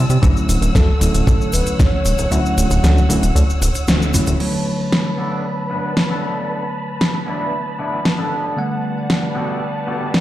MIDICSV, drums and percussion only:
0, 0, Header, 1, 2, 480
1, 0, Start_track
1, 0, Key_signature, 2, "minor"
1, 0, Tempo, 521739
1, 209, Time_signature, 4, 2, 24, 8
1, 9388, End_track
2, 0, Start_track
2, 0, Title_t, "Drums"
2, 89, Note_on_c, 9, 69, 44
2, 92, Note_on_c, 9, 42, 62
2, 99, Note_on_c, 9, 82, 33
2, 181, Note_off_c, 9, 69, 0
2, 184, Note_off_c, 9, 42, 0
2, 191, Note_off_c, 9, 82, 0
2, 209, Note_on_c, 9, 42, 50
2, 210, Note_on_c, 9, 36, 110
2, 216, Note_on_c, 9, 82, 44
2, 219, Note_on_c, 9, 69, 37
2, 301, Note_off_c, 9, 42, 0
2, 302, Note_off_c, 9, 36, 0
2, 308, Note_off_c, 9, 82, 0
2, 311, Note_off_c, 9, 69, 0
2, 338, Note_on_c, 9, 82, 31
2, 430, Note_off_c, 9, 82, 0
2, 451, Note_on_c, 9, 46, 96
2, 451, Note_on_c, 9, 69, 82
2, 458, Note_on_c, 9, 82, 84
2, 543, Note_off_c, 9, 46, 0
2, 543, Note_off_c, 9, 69, 0
2, 550, Note_off_c, 9, 82, 0
2, 574, Note_on_c, 9, 42, 64
2, 579, Note_on_c, 9, 69, 45
2, 581, Note_on_c, 9, 82, 34
2, 666, Note_off_c, 9, 42, 0
2, 671, Note_off_c, 9, 69, 0
2, 673, Note_off_c, 9, 82, 0
2, 690, Note_on_c, 9, 36, 101
2, 693, Note_on_c, 9, 42, 52
2, 695, Note_on_c, 9, 69, 32
2, 696, Note_on_c, 9, 38, 113
2, 700, Note_on_c, 9, 82, 47
2, 782, Note_off_c, 9, 36, 0
2, 785, Note_off_c, 9, 42, 0
2, 787, Note_off_c, 9, 69, 0
2, 788, Note_off_c, 9, 38, 0
2, 792, Note_off_c, 9, 82, 0
2, 931, Note_on_c, 9, 46, 90
2, 935, Note_on_c, 9, 69, 79
2, 938, Note_on_c, 9, 82, 77
2, 1023, Note_off_c, 9, 46, 0
2, 1027, Note_off_c, 9, 69, 0
2, 1030, Note_off_c, 9, 82, 0
2, 1052, Note_on_c, 9, 69, 52
2, 1053, Note_on_c, 9, 42, 66
2, 1060, Note_on_c, 9, 82, 37
2, 1144, Note_off_c, 9, 69, 0
2, 1145, Note_off_c, 9, 42, 0
2, 1152, Note_off_c, 9, 82, 0
2, 1170, Note_on_c, 9, 69, 37
2, 1171, Note_on_c, 9, 36, 107
2, 1172, Note_on_c, 9, 42, 52
2, 1179, Note_on_c, 9, 82, 46
2, 1262, Note_off_c, 9, 69, 0
2, 1263, Note_off_c, 9, 36, 0
2, 1264, Note_off_c, 9, 42, 0
2, 1271, Note_off_c, 9, 82, 0
2, 1300, Note_on_c, 9, 82, 30
2, 1392, Note_off_c, 9, 82, 0
2, 1401, Note_on_c, 9, 69, 88
2, 1412, Note_on_c, 9, 46, 100
2, 1419, Note_on_c, 9, 82, 81
2, 1493, Note_off_c, 9, 69, 0
2, 1504, Note_off_c, 9, 46, 0
2, 1511, Note_off_c, 9, 82, 0
2, 1530, Note_on_c, 9, 69, 48
2, 1533, Note_on_c, 9, 42, 65
2, 1540, Note_on_c, 9, 82, 34
2, 1622, Note_off_c, 9, 69, 0
2, 1625, Note_off_c, 9, 42, 0
2, 1632, Note_off_c, 9, 82, 0
2, 1650, Note_on_c, 9, 69, 38
2, 1651, Note_on_c, 9, 36, 101
2, 1652, Note_on_c, 9, 42, 52
2, 1654, Note_on_c, 9, 38, 110
2, 1658, Note_on_c, 9, 82, 45
2, 1742, Note_off_c, 9, 69, 0
2, 1743, Note_off_c, 9, 36, 0
2, 1744, Note_off_c, 9, 42, 0
2, 1746, Note_off_c, 9, 38, 0
2, 1750, Note_off_c, 9, 82, 0
2, 1884, Note_on_c, 9, 69, 81
2, 1892, Note_on_c, 9, 46, 98
2, 1899, Note_on_c, 9, 82, 83
2, 1976, Note_off_c, 9, 69, 0
2, 1984, Note_off_c, 9, 46, 0
2, 1991, Note_off_c, 9, 82, 0
2, 2006, Note_on_c, 9, 69, 47
2, 2013, Note_on_c, 9, 42, 66
2, 2020, Note_on_c, 9, 82, 34
2, 2098, Note_off_c, 9, 69, 0
2, 2105, Note_off_c, 9, 42, 0
2, 2112, Note_off_c, 9, 82, 0
2, 2127, Note_on_c, 9, 69, 36
2, 2132, Note_on_c, 9, 42, 51
2, 2139, Note_on_c, 9, 82, 44
2, 2219, Note_off_c, 9, 69, 0
2, 2224, Note_off_c, 9, 42, 0
2, 2231, Note_off_c, 9, 82, 0
2, 2261, Note_on_c, 9, 82, 30
2, 2353, Note_off_c, 9, 82, 0
2, 2371, Note_on_c, 9, 69, 91
2, 2372, Note_on_c, 9, 46, 98
2, 2379, Note_on_c, 9, 82, 80
2, 2463, Note_off_c, 9, 69, 0
2, 2464, Note_off_c, 9, 46, 0
2, 2471, Note_off_c, 9, 82, 0
2, 2485, Note_on_c, 9, 69, 48
2, 2494, Note_on_c, 9, 42, 69
2, 2500, Note_on_c, 9, 82, 34
2, 2577, Note_off_c, 9, 69, 0
2, 2586, Note_off_c, 9, 42, 0
2, 2592, Note_off_c, 9, 82, 0
2, 2610, Note_on_c, 9, 69, 38
2, 2612, Note_on_c, 9, 42, 53
2, 2615, Note_on_c, 9, 38, 123
2, 2619, Note_on_c, 9, 82, 46
2, 2702, Note_off_c, 9, 69, 0
2, 2704, Note_off_c, 9, 42, 0
2, 2707, Note_off_c, 9, 38, 0
2, 2711, Note_off_c, 9, 82, 0
2, 2740, Note_on_c, 9, 82, 31
2, 2832, Note_off_c, 9, 82, 0
2, 2851, Note_on_c, 9, 46, 95
2, 2854, Note_on_c, 9, 69, 82
2, 2858, Note_on_c, 9, 82, 77
2, 2943, Note_off_c, 9, 46, 0
2, 2946, Note_off_c, 9, 69, 0
2, 2950, Note_off_c, 9, 82, 0
2, 2971, Note_on_c, 9, 69, 48
2, 2973, Note_on_c, 9, 42, 68
2, 2980, Note_on_c, 9, 82, 36
2, 3063, Note_off_c, 9, 69, 0
2, 3065, Note_off_c, 9, 42, 0
2, 3072, Note_off_c, 9, 82, 0
2, 3092, Note_on_c, 9, 42, 56
2, 3092, Note_on_c, 9, 69, 36
2, 3099, Note_on_c, 9, 82, 45
2, 3184, Note_off_c, 9, 42, 0
2, 3184, Note_off_c, 9, 69, 0
2, 3191, Note_off_c, 9, 82, 0
2, 3219, Note_on_c, 9, 82, 30
2, 3311, Note_off_c, 9, 82, 0
2, 3329, Note_on_c, 9, 69, 80
2, 3332, Note_on_c, 9, 46, 101
2, 3338, Note_on_c, 9, 82, 81
2, 3421, Note_off_c, 9, 69, 0
2, 3424, Note_off_c, 9, 46, 0
2, 3430, Note_off_c, 9, 82, 0
2, 3443, Note_on_c, 9, 69, 43
2, 3452, Note_on_c, 9, 42, 64
2, 3459, Note_on_c, 9, 82, 34
2, 3535, Note_off_c, 9, 69, 0
2, 3544, Note_off_c, 9, 42, 0
2, 3551, Note_off_c, 9, 82, 0
2, 3563, Note_on_c, 9, 69, 37
2, 3571, Note_on_c, 9, 42, 52
2, 3574, Note_on_c, 9, 38, 113
2, 3578, Note_on_c, 9, 82, 42
2, 3655, Note_off_c, 9, 69, 0
2, 3663, Note_off_c, 9, 42, 0
2, 3666, Note_off_c, 9, 38, 0
2, 3670, Note_off_c, 9, 82, 0
2, 3699, Note_on_c, 9, 82, 31
2, 3791, Note_off_c, 9, 82, 0
2, 3804, Note_on_c, 9, 69, 75
2, 3810, Note_on_c, 9, 46, 94
2, 3817, Note_on_c, 9, 82, 80
2, 3896, Note_off_c, 9, 69, 0
2, 3902, Note_off_c, 9, 46, 0
2, 3909, Note_off_c, 9, 82, 0
2, 3923, Note_on_c, 9, 69, 44
2, 3932, Note_on_c, 9, 42, 70
2, 3938, Note_on_c, 9, 82, 33
2, 4015, Note_off_c, 9, 69, 0
2, 4024, Note_off_c, 9, 42, 0
2, 4030, Note_off_c, 9, 82, 0
2, 4050, Note_on_c, 9, 49, 74
2, 4142, Note_off_c, 9, 49, 0
2, 4531, Note_on_c, 9, 38, 111
2, 4623, Note_off_c, 9, 38, 0
2, 5491, Note_on_c, 9, 38, 108
2, 5583, Note_off_c, 9, 38, 0
2, 6450, Note_on_c, 9, 38, 111
2, 6542, Note_off_c, 9, 38, 0
2, 7410, Note_on_c, 9, 38, 110
2, 7502, Note_off_c, 9, 38, 0
2, 8371, Note_on_c, 9, 38, 111
2, 8463, Note_off_c, 9, 38, 0
2, 9331, Note_on_c, 9, 38, 104
2, 9388, Note_off_c, 9, 38, 0
2, 9388, End_track
0, 0, End_of_file